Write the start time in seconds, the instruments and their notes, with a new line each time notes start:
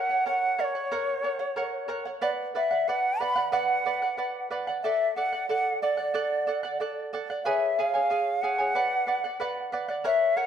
0.00 quena F#5
0.09 charango C#5 F#5
0.26 charango A#4 C#5 F#5, quena F#5
0.58 charango A#4 C#5 F#5, quena D5
0.64 quena C#5
0.75 charango C#5 F#5
0.92 charango A#4 C#5 F#5
1.23 charango A#4 C#5 F#5
1.39 charango C#5 F#5
1.56 charango A#4 C#5 F#5
1.88 charango A#4 C#5 F#5
2.05 charango C#5 F#5
2.21 charango B4 D5 F#5, quena D5
2.55 charango B4 D5 F#5, quena E5
2.71 charango D5 F#5
2.88 charango B4 D5 F#5, quena F#5
3.20 charango B4 D5 F#5, quena B5
3.36 charango D5 F#5
3.52 charango B4 D5 F#5, quena F#5
3.86 charango B4 D5 F#5
4.02 charango D5 F#5
4.18 charango B4 D5 F#5
4.50 charango B4 D5 F#5
4.67 charango D5 F#5
4.83 charango A4 D5 F#5, quena E5
5.15 charango A4 D5 F#5, quena F#5
5.33 charango D5 F#5
5.49 charango A4 D5 F#5, quena F#5
5.82 charango A4 D5 F#5, quena D5
5.97 charango D5 F#5
6.14 charango A4 D5 F#5
6.47 charango A4 D5 F#5
6.63 charango D5 F#5
6.80 charango A4 D5 F#5
7.13 charango A4 D5 F#5
7.30 charango D5 F#5
7.44 charango G#4 B4 C#5 G#5, quena E5 F5
7.76 charango G#4 C#5 F5 G#5, quena F5
7.94 charango G#4 C#5 G#5
8.10 charango G#4 C#5 F5 G#5
8.42 charango G#4 C#5 F5 G#5, quena F#5
8.58 charango G#4 C#5 G#5
8.75 charango B4 D5 F#5
9.07 charango B4 D5 F#5
9.24 charango D5 F#5
9.40 charango B4 D5 F#5
9.72 charango B4 D5 F#5
9.89 charango D5 F#5
10.04 charango A#4 C#5 F#5, quena E5
10.36 charango A#4 C#5 F#5, quena F#5